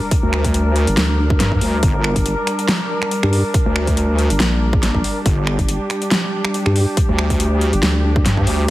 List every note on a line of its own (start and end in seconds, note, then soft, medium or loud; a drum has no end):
0.00 8.70 G3 medium
0.00 8.70 D4 medium
0.00 5.24 A#4 medium
0.00 sub drop medium
0.11 kick loud
0.11 closed hi-hat medium
0.23 0.85 D2 loud
0.33 finger snap medium
0.45 kick medium
0.45 closed hi-hat medium
0.54 closed hi-hat medium
0.76 closed hi-hat medium
0.87 0.96 G1 loud
0.87 closed hi-hat medium
0.97 1.38 D2 loud
0.97 snare loud
0.97 closed hi-hat medium
1.30 kick loud
1.40 1.60 G2 loud
1.40 snare medium
1.40 closed hi-hat medium
1.52 kick medium
1.61 1.81 D2 medium
1.61 open hi-hat medium
1.83 2.14 G1 loud
1.83 kick loud
1.83 closed hi-hat medium
2.04 finger snap medium
2.16 2.36 G1 loud
2.16 kick medium
2.16 closed hi-hat medium
2.26 closed hi-hat medium
2.47 finger snap medium
2.47 closed hi-hat medium
2.59 closed hi-hat medium
2.69 snare loud
2.69 closed hi-hat medium
3.02 finger snap medium
3.11 closed hi-hat medium
3.23 3.43 G2 loud
3.23 finger snap medium
3.33 open hi-hat medium
3.54 kick loud
3.54 closed hi-hat medium
3.66 4.28 D2 loud
3.76 finger snap medium
3.87 kick medium
3.87 closed hi-hat medium
3.97 closed hi-hat medium
4.19 closed hi-hat medium
4.30 4.38 G1 loud
4.30 closed hi-hat medium
4.40 5.03 A#1 loud
4.40 snare loud
4.40 closed hi-hat medium
4.73 kick loud
4.83 snare medium
4.83 closed hi-hat medium
4.95 kick medium
5.04 open hi-hat medium
5.26 5.57 G1 medium
5.26 8.70 G4 medium
5.26 kick loud
5.26 closed hi-hat medium
5.47 finger snap medium
5.59 5.78 G1 loud
5.59 kick medium
5.59 closed hi-hat soft
5.69 closed hi-hat medium
5.90 finger snap medium
5.90 closed hi-hat medium
6.02 closed hi-hat medium
6.11 snare loud
6.11 closed hi-hat medium
6.45 finger snap medium
6.54 closed hi-hat medium
6.66 6.86 G2 medium
6.66 finger snap medium
6.76 open hi-hat medium
6.97 kick loud
6.97 closed hi-hat medium
7.09 7.71 D2 medium
7.18 finger snap medium
7.30 kick medium
7.30 closed hi-hat medium
7.40 closed hi-hat medium
7.61 closed hi-hat soft
7.73 7.81 G1 loud
7.73 closed hi-hat medium
7.83 8.24 D2 loud
7.83 snare loud
7.83 closed hi-hat medium
8.16 kick loud
8.26 8.46 G2 loud
8.26 snare medium
8.26 closed hi-hat medium
8.37 kick medium
8.47 8.67 D2 medium
8.47 open hi-hat medium